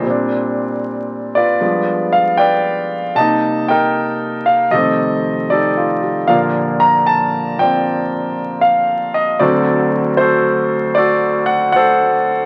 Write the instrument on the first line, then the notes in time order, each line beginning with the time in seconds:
grand piano
0.00 A#2 G3
0.06 C4
0.10 D4
1.35 F4 B4 D5
1.61 G2 F3 G#3 B3
2.12 F5
2.37 B4 D5 G5
3.15 C3 G3 A#3 D#5 A5
3.20 D#4
3.68 A#4 D#5 G5
4.46 F5
4.71 F2 C3 D#3 G3 G4 A4 D#5
4.75 A3 C4
5.50 D#4 G4 A4 D5
5.77 F4
6.02 G4
6.27 A#2 D3 F3 A#3 A#4 D5 F5
6.80 A#5
7.06 A5
7.58 F3 C4 D5 G5
8.61 F5
9.14 D#5
9.40 D2 D3 F#3 C4 F#4 A4 D5
10.17 F#4 A4 C5
10.95 F#4 A4 D5
11.46 F#5
11.72 A4 C5 F#5